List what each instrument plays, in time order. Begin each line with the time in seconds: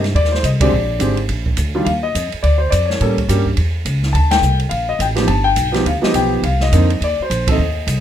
Already playing: upright bass G2
0.04 snare, ride
0.14 upright bass D#2, grand piano D5, kick, ride
0.25 snare
0.32 grand piano C5, snare
0.43 upright bass C2, grand piano D#5, kick, hi-hat pedal, ride
0.61 grand piano D3 G#3 C4 G4 D5, kick, ride
0.72 upright bass A#1
0.99 upright bass G#1, grand piano D3 G#3 C4 G4, kick, hi-hat pedal, ride
1.17 ride
1.29 upright bass A#1, kick, ride
1.46 kick
1.57 upright bass D2, kick, hi-hat pedal, ride
1.75 grand piano D#3 G3 D4 F4
1.85 upright bass D#2, grand piano F5, kick, ride
2.03 grand piano D#5
2.15 upright bass F2, kick, hi-hat pedal, ride
2.32 muted upright bass stroke, ride
2.43 upright bass D2, grand piano D5, kick, ride
2.58 grand piano C5
2.70 upright bass F2, grand piano D5, kick, hi-hat pedal, ride
2.86 grand piano C#5
2.90 snare
3.00 upright bass A2, grand piano G3 A#3 C#4 A4, kick, ride
3.18 kick, ride
3.28 upright bass G2, grand piano G3 A#3 C#4 G4, kick, hi-hat pedal, ride
3.46 kick
3.57 upright bass E2, kick, ride
3.85 upright bass C#2, kick, hi-hat pedal, ride
4.03 snare
4.13 upright bass D2, grand piano A5, kick, ride
4.31 grand piano G5, snare, ride
4.41 upright bass C2, hi-hat pedal
4.60 ride
4.69 upright bass A#1, grand piano F5, kick, ride
4.89 grand piano D#5
4.99 upright bass A1, grand piano G5, kick, hi-hat pedal, ride
5.15 grand piano F3 B3 D#4 G4, snare, ride
5.27 upright bass G1, grand piano A5, kick, ride
5.44 grand piano G5
5.56 upright bass B1, kick, hi-hat pedal, ride
5.72 grand piano F3 B3 D#4 G4, snare, ride
5.85 upright bass D2, grand piano F5, kick, ride
6.01 grand piano F3 B3 D#4 G4 D#5, muted upright bass stroke, snare
6.14 upright bass B1, grand piano G5, kick, hi-hat pedal, ride
6.43 upright bass C2, grand piano F5, kick, ride
6.60 grand piano D#5, snare
6.72 upright bass F2, grand piano D3 A#3 C4 D#4, kick, hi-hat pedal, ride
6.90 ride
7.01 upright bass D#2, grand piano D5, kick, ride
7.20 grand piano C5, muted upright bass stroke
7.30 upright bass A#1, kick, hi-hat pedal, ride
7.47 grand piano D#3 A3 C4 A4, kick, ride
7.52 grand piano D#5
7.58 upright bass D#2
7.87 upright bass C2, kick, hi-hat pedal, ride